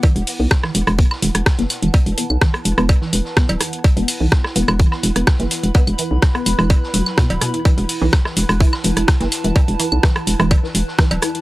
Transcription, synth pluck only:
\new Staff \with { instrumentName = "Synth pluck" } { \clef bass \time 4/4 \key c \lydian \tempo 4 = 126 e16 r8 b16 r16 e16 r8 b16 r16 e16 r8 b16 r16 e16 | r8 b16 r16 e16 r8 b16 r16 e16 r8 b16 r16 e16 r16 | r16 b16 r16 e16 r8 b16 r16 e16 r8 b16 r16 e16 r8 | b16 r16 e16 r8 b16 r16 e16 r8 fis16 r16 b,16 r16 b,16 e16 |
e16 r8 e16 r16 e16 r8 e16 r16 e16 r8 e16 r16 e16 | r8 e16 r16 e16 r8 e16 r16 e16 r8 e16 r16 e16 r16 | }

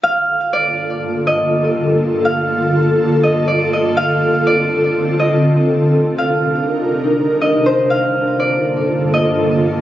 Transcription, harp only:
\new Staff \with { instrumentName = "Harp" } { \time 4/4 \key g \minor \tempo 4 = 122 f''4 d''4. ees''8 r4 | r8 f''8 r4. ees''8 d''8 ees''8 | f''4 d''4. ees''8 r4 | r8 f''8 r2 ees''8 c''8 |
f''4 d''4. ees''8 r4 | }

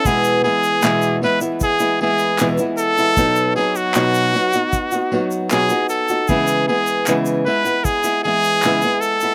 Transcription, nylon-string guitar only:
\new Staff \with { instrumentName = "Nylon-string guitar" } { \time 4/4 \key e \major \tempo 4 = 77 <e, b, e gis b e'>8 <e gis b e'>8 <e, b, e gis b e'>8 <e gis b e'>16 <e gis b e'>8 <e gis b e'>16 <e gis b e'>8 <e, b, e gis b e'>16 <e gis b e'>8 <e gis b e'>16 | <b, fis b dis' fis'>8 <fis b dis' fis'>8 <b, fis b dis' fis'>8 <fis b dis' fis'>16 <b dis' fis'>8 <b dis' fis'>16 <fis b dis' fis'>8 <b, fis b dis' fis'>16 <b dis' fis'>8 <b dis' fis'>16 | <cis e gis b e'>8 <e gis b e'>8 <cis e gis b e'>8 <e gis b e'>16 <gis b e'>8 <gis b e'>16 <e gis b e'>8 <cis e gis b e'>16 <gis b>8 <gis b e'>16 | }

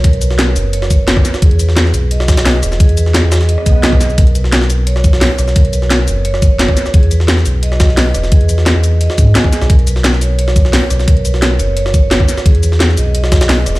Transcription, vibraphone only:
\new Staff \with { instrumentName = "Vibraphone" } { \time 4/4 \key b \major \tempo 4 = 174 ais'8 b'8 r4 cis''8 cis''8 b'8 r8 | gis'8 b'8 r4 dis''8 dis''8 b'8 r8 | gis'8 b'8 r4 dis''8 dis''16 r16 b'8 r8 | ais'8 b'8 r4 cis''8 cis''8 b'8 r8 |
ais'8 b'8 r4 cis''8 cis''8 b'8 r8 | gis'8 b'8 r4 dis''8 dis''8 b'8 r8 | gis'8 b'8 r4 dis''8 r8 gis''8 gis'8 | ais'8 b'8 r8 cis''8 cis''8 r8 b'8 r8 |
ais'8 b'8 r8 cis''8 cis''8 cis''8 b'8 r8 | gis'8 b'8 r8 dis''8 dis''8 r8 b'8 r8 | }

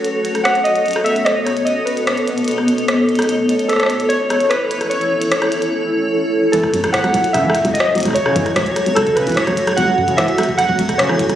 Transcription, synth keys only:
\new Staff \with { instrumentName = "Synth keys" } { \time 4/4 \key fis \dorian \tempo 4 = 148 r4 fis''8 dis''4 e''8 dis''8 cis''8 | dis''8 b'2 r4. | r4 a'4 cis''4 b'4 | cis''2 r2 |
a'4 fis''4 e''4 dis''4 | cis''2 a'8 b'8 cis''4 | fis''4 e''4 fis''4 cis''4 | }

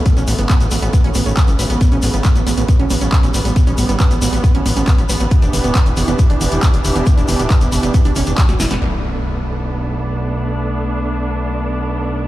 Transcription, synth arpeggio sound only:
\new Staff \with { instrumentName = "Synth arpeggio sound" } { \time 4/4 \key b \minor \tempo 4 = 137 b16 cis'16 b16 b16 b16 b16 b16 b16 b16 cis'16 b16 cis'16 b16 cis'16 b'16 b16 | b16 cis'16 b16 b16 b16 b16 b16 b16 b16 cis'16 b16 cis'16 b16 cis'16 b'16 b16 | b16 cis'16 b16 b16 b16 b16 b16 b16 b16 cis'16 b16 cis'16 b16 cis'16 b'16 b16 | b16 d'16 b16 b16 b16 b16 b16 b16 b16 d'16 b16 d'16 b16 d'16 b'16 b16 |
b16 d'16 b16 b16 b16 b16 b16 b16 b16 d'16 cis'16 d'16 fis16 fis'16 e'16 b16 | r1 | r1 | }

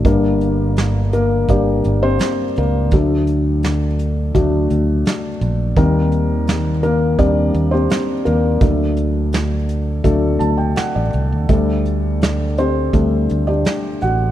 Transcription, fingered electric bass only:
\new Staff \with { instrumentName = "Fingered electric bass" } { \clef bass \time 4/4 \key g \minor \tempo 4 = 84 g,,2 g,,8 g,,8 r8 cis,8 | d,2 d,8 d,8 r8 bes,,8 | ees,2 ees,8 ees,8 r8 ees,8 | d,2 d,8 d,8 r16 a,,16 c,16 d,16 |
d,2 d,8 d,8 r8 a,,8 | }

